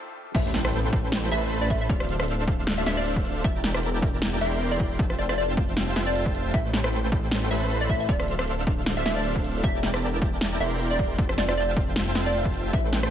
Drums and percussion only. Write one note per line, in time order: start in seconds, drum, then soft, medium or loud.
0.35 kick loud
0.35 closed hi-hat medium
0.35 crash loud
0.54 snare medium
0.54 closed hi-hat medium
0.65 cross-stick medium
0.73 closed hi-hat medium
0.93 kick loud
0.93 closed hi-hat medium
1.12 snare loud
1.12 closed hi-hat medium
1.31 closed hi-hat medium
1.51 closed hi-hat medium
1.70 kick medium
1.70 closed hi-hat medium
1.89 kick loud
1.89 closed hi-hat medium
2.00 cross-stick medium
2.09 closed hi-hat medium
2.20 cross-stick medium
2.28 closed hi-hat medium
2.48 kick loud
2.48 closed hi-hat medium
2.67 snare loud
2.67 closed hi-hat medium
2.86 snare medium
2.86 closed hi-hat medium
3.06 closed hi-hat medium
3.16 kick medium
3.25 closed hi-hat medium
3.44 kick loud
3.44 closed hi-hat medium
3.64 snare medium
3.64 closed hi-hat medium
3.74 cross-stick medium
3.83 closed hi-hat medium
4.02 kick loud
4.02 closed hi-hat medium
4.22 snare loud
4.22 closed hi-hat medium
4.41 closed hi-hat medium
4.61 closed hi-hat medium
4.80 kick medium
4.80 closed hi-hat medium
4.99 kick loud
4.99 closed hi-hat medium
5.10 cross-stick medium
5.19 closed hi-hat medium
5.29 cross-stick medium
5.38 closed hi-hat medium
5.57 kick loud
5.57 closed hi-hat medium
5.77 snare loud
5.77 closed hi-hat medium
5.96 snare medium
5.96 closed hi-hat medium
6.15 closed hi-hat medium
6.26 kick medium
6.35 closed hi-hat medium
6.54 kick loud
6.54 closed hi-hat medium
6.73 snare medium
6.73 closed hi-hat medium
6.84 cross-stick medium
6.93 closed hi-hat medium
7.12 kick loud
7.12 closed hi-hat medium
7.31 snare loud
7.31 closed hi-hat medium
7.51 closed hi-hat medium
7.70 closed hi-hat medium
7.89 kick medium
7.89 closed hi-hat medium
8.09 kick loud
8.09 closed hi-hat medium
8.20 cross-stick medium
8.28 closed hi-hat medium
8.39 cross-stick medium
8.48 closed hi-hat medium
8.67 kick loud
8.67 closed hi-hat medium
8.86 snare loud
8.86 closed hi-hat medium
9.06 snare medium
9.06 closed hi-hat medium
9.25 closed hi-hat medium
9.36 kick medium
9.44 closed hi-hat medium
9.64 kick loud
9.64 closed hi-hat medium
9.83 snare medium
9.83 closed hi-hat medium
9.94 cross-stick medium
10.02 closed hi-hat medium
10.22 kick loud
10.22 closed hi-hat medium
10.41 snare loud
10.41 closed hi-hat medium
10.60 closed hi-hat medium
10.80 closed hi-hat medium
10.99 kick medium
10.99 closed hi-hat medium
11.18 kick loud
11.18 closed hi-hat medium
11.29 cross-stick medium
11.38 snare medium
11.38 closed hi-hat medium
11.49 cross-stick medium
11.57 closed hi-hat medium
11.77 kick loud
11.77 closed hi-hat medium
11.96 snare loud
11.96 closed hi-hat medium
12.15 snare medium
12.15 closed hi-hat medium
12.35 closed hi-hat medium
12.45 kick medium
12.54 closed hi-hat medium
12.73 kick loud
12.73 closed hi-hat medium
12.93 snare medium
12.93 closed hi-hat medium
13.03 cross-stick medium